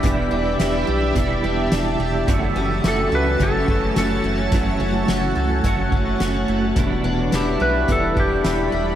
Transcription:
Already playing: G3 D4 E4 G4 D5 E5
0.03 E1 E2 B2 E3 G3 D4 E4 A5, kick, closed hi-hat
0.31 E1 D4
0.59 E1 E3 G3 D4 E4, snare, closed hi-hat
0.87 B1 G3
1.14 E1 E2 B2 E3 G3 D4, kick, closed hi-hat
1.18 D4 E4
1.44 E1 G3
1.72 E1 D4, snare, closed hi-hat
2.00 E1 G3
2.27 F#1 F#2 C#3 E3 A3 C#4 F#4 C#5, kick, closed hi-hat
2.56 F#1 C#4
2.83 F#1 E3 A3 C#4 F#4, snare, closed hi-hat
2.87 F#4 A4
3.12 C#2 A3 B4
3.39 F#1 F#2 C#3 E3 A3 C#4 F#4 A4, kick, closed hi-hat
3.67 F#1 E3 A3 C#4 F#4, kick
3.96 F#1 C#4 A4, snare, closed hi-hat
4.24 F#1 A3
4.51 F#1 F#2 C#3 E3 A3 F#5, kick, closed hi-hat
4.56 C#4 F#4
4.80 F#1 C#4
5.08 F#1 F#4, snare, closed hi-hat
5.35 C#2 A3
5.64 F#1 F#2 C#3 E3 A3 C#4 F#4, kick, closed hi-hat
5.91 F#1 E3 A3 C#4 F#4, kick
6.20 F#1 C#4, snare, closed hi-hat
6.48 F#1 A3
6.76 E1 E2 B2 E3 G3 D4 E4 G4 D5 E5 B5, kick, closed hi-hat
7.04 E1 D4
7.32 E1 E3 G3 D4 E4 G4, snare, closed hi-hat
7.60 B1 G3 B4
7.87 E1 E2 B2 E3 G3 D4 E4, kick, closed hi-hat
7.92 A4
8.16 E1 G3 D4 E4, kick
8.20 G4
8.44 E1 D4, snare, closed hi-hat
8.72 E1 G3

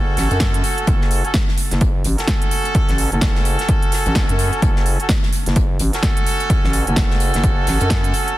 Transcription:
Already playing: F#1 C#4 F#4 A4
0.17 A1, snare, closed hi-hat, open hi-hat
0.31 F#2, closed hi-hat
0.40 kick, snare, closed hi-hat
0.54 closed hi-hat
0.64 closed hi-hat, open hi-hat
0.78 closed hi-hat
0.87 F#1, kick, closed hi-hat
1.01 snare
1.11 closed hi-hat, open hi-hat
1.25 C#4 F#4 A4, closed hi-hat
1.34 kick, snare, closed hi-hat
1.48 snare
1.57 closed hi-hat, open hi-hat
1.71 F#1, snare, closed hi-hat
1.81 kick, closed hi-hat
2.04 A1, closed hi-hat, open hi-hat
2.18 C#4 F#4 A4, snare, closed hi-hat
2.27 kick, snare, closed hi-hat
2.42 closed hi-hat
2.51 closed hi-hat, open hi-hat
2.65 closed hi-hat
2.75 kick, closed hi-hat
2.89 A1, snare, closed hi-hat
2.98 closed hi-hat, open hi-hat
3.12 F#1 C#4 F#4 A4, closed hi-hat
3.21 F#1, kick, snare, closed hi-hat
3.35 snare
3.45 closed hi-hat, open hi-hat
3.59 snare, closed hi-hat
3.68 kick, closed hi-hat
3.82 closed hi-hat
3.92 snare, closed hi-hat, open hi-hat
4.06 A1, closed hi-hat
4.15 kick, snare, closed hi-hat
4.29 F#2, closed hi-hat
4.39 closed hi-hat, open hi-hat
4.53 closed hi-hat
4.62 F#1, kick, closed hi-hat
4.76 snare
4.86 closed hi-hat, open hi-hat
5.00 C#4 F#4 A4, closed hi-hat
5.09 kick, snare, closed hi-hat
5.23 snare
5.33 closed hi-hat, open hi-hat
5.46 F#1, snare, closed hi-hat
5.56 kick, closed hi-hat
5.79 A1, closed hi-hat, open hi-hat
5.93 C#4 F#4 A4, snare, closed hi-hat
6.03 kick, snare, closed hi-hat
6.17 closed hi-hat
6.26 closed hi-hat, open hi-hat
6.40 closed hi-hat
6.50 kick, closed hi-hat
6.64 A1, snare
6.73 closed hi-hat, open hi-hat
6.87 F#1 C#4 F#4 A4, closed hi-hat
6.96 F#1, kick, snare, closed hi-hat
7.10 snare
7.20 closed hi-hat, open hi-hat
7.34 F#1, snare, closed hi-hat
7.44 kick, closed hi-hat
7.67 A1, snare, closed hi-hat, open hi-hat
7.80 F#2, closed hi-hat
7.90 kick, snare, closed hi-hat
8.04 closed hi-hat
8.14 closed hi-hat, open hi-hat
8.28 closed hi-hat

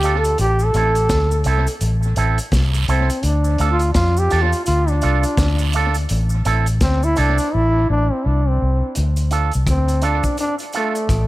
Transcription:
Already playing: D2 G4
0.03 D4 F4 A4, closed hi-hat, cabasa
0.17 A4
0.24 closed hi-hat, cabasa
0.38 A1 G4, closed hi-hat, cabasa
0.59 cabasa
0.65 A4
0.74 A1 C4 E4 A4, closed hi-hat, cabasa
0.95 closed hi-hat, cabasa
1.09 D2, kick, snare, closed hi-hat, cabasa
1.31 cabasa
1.44 C2 C4 E4 A4, closed hi-hat, cabasa
1.67 closed hi-hat, cabasa
1.81 A1, closed hi-hat, cabasa
2.03 cabasa
2.16 A1 C4 E4 A4, closed hi-hat, cabasa
2.38 closed hi-hat, cabasa
2.52 C2, kick, snare, closed hi-hat, cabasa, long guiro
2.74 muted clean electric guitar stroke, cabasa
2.88 C2 C4 E4 A4, closed hi-hat, cabasa
3.10 closed hi-hat, cabasa
3.23 D2 D4, closed hi-hat, cabasa
3.44 cabasa
3.58 D2 D4 F4 A4, closed hi-hat, cabasa
3.72 F4
3.79 closed hi-hat, cabasa
3.94 F2 F4, kick, snare, closed hi-hat, cabasa
4.17 G4, cabasa
4.30 E2 D4 F4 A4, closed hi-hat, cabasa
4.42 F4
4.53 closed hi-hat, cabasa
4.65 D2 F4, closed hi-hat, cabasa
4.88 D4, cabasa
5.02 C2 D4 F4 A4, closed hi-hat, cabasa
5.23 closed hi-hat, cabasa
5.37 D2, kick, snare, closed hi-hat, cabasa, long guiro
5.59 muted clean electric guitar stroke, cabasa
5.73 D4 F4 A4, closed hi-hat, cabasa
5.94 closed hi-hat, cabasa
6.09 A1, closed hi-hat, cabasa
6.30 cabasa
6.45 A1 C4 E4 A4, closed hi-hat, cabasa
6.66 closed hi-hat, cabasa
6.81 D2 C4, kick, snare, closed hi-hat, cabasa
7.03 E4, cabasa
7.16 C2 C4 D4 E4 A4, closed hi-hat, cabasa
7.38 closed hi-hat, cabasa
7.54 A1 E4
7.90 A1 D4
8.12 C4
8.26 C2 D4
8.49 C4
8.62 C2
8.95 D2, closed hi-hat, cabasa
9.16 closed hi-hat, cabasa
9.31 D4 F4 A4, closed hi-hat, cabasa
9.51 C2, closed hi-hat, cabasa
9.67 D2 C4, kick, cross-stick, closed hi-hat, cabasa
9.88 closed hi-hat, cabasa
10.02 D4 F4 A4, closed hi-hat, cabasa
10.23 kick, closed hi-hat, cabasa
10.37 D4, closed hi-hat, cabasa
10.59 closed hi-hat, cabasa
10.73 D4 F4 A4, closed hi-hat, cabasa
10.77 A3
10.95 closed hi-hat, cabasa
11.09 A1, kick, cross-stick, closed hi-hat, cabasa

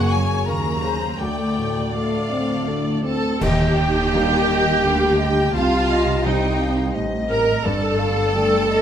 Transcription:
Already playing: F#1 F#2 C#3 A#3 G#4 C#5 F#5 C#6
0.11 C#5 G#5
0.48 D#2 A#3 G#4 A#4 A#5 C#6
0.84 G#4 C5
1.19 D2 A3 A4 D5 G5 D6
1.58 A2
1.93 A3 A4 F5 D6
2.30 C4 D5
2.68 D4 A4
3.03 A3 C4 A4 A5
3.41 D#2 D#3 A#3 G4 D#5 G5, concert bass drum, crash
3.77 D#5 G5
4.12 G3 A#4 D#5 F5
4.48 D#5
4.83 D2 D3 F5 G5
5.18 D#5 G5
5.53 C2 C3 C4 F4 F5 A5
5.89 D#5
6.24 G3 D#4 C5 D#5 G5
6.60 F5
6.95 A1 A2 D#5
7.29 A#4 A#5
7.64 G1 G2 D3 A3 A4 D5 A5
7.99 F5
8.35 D3 A3 A4 G5
8.69 D#5

